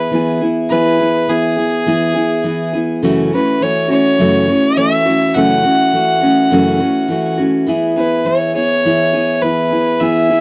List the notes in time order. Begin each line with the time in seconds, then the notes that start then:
Already playing: B3 E4 G#4 B4
0.11 E3 B3 E4 G#4
0.41 B3 E4 G#4
0.69 E3 B3 E4 G#4 B4
0.99 B3 E4 G#4
1.28 E3 B3 E4 G#4
1.56 B3 E4 G#4
1.86 E3 B3 E4 G#4
2.15 B3 E4 G#4
2.44 E3 B3 E4 G#4
2.73 B3 E4 G#4
3.02 F#2 C#3 E3 A3 C#4 F#4
3.32 E3 A3 C#4 F#4 B4
3.61 E3 A3 C#4 F#4 C#5
3.88 E3 A3 C#4 F#4 C#5
4.18 F#2 C#3 E3 A3 C#4 F#4
4.48 E3 A3 C#4 F#4
4.77 E3 A3 C#4 F#4 E5
5.05 E3 A3 C#4 F#4
5.35 F#2 C#3 E3 A3 C#4 F#4 F#5
5.64 E3 A3 C#4 F#4
5.93 E3 A3 C#4 F#4
6.21 E3 A3 C#4 F#4
6.51 F#2 C#3 E3 A3 C#4 F#4
6.80 E3 A3 C#4 F#4
7.08 E3 A3 C#4 F#4
7.38 E3 A3 C#4 F#4
7.67 E3 B3 E4 G#4
7.96 B3 E4 G#4 B4
8.25 E3 B3 E4 G#4 C#5
8.54 B3 E4 G#4 C#5
8.85 E3 B3 E4 G#4
9.13 B3 E4 G#4
9.42 E3 B3 E4 G#4 B4
9.71 B3 E4 G#4
10.00 E3 B3 E4 G#4 E5
10.29 B3 E4 G#4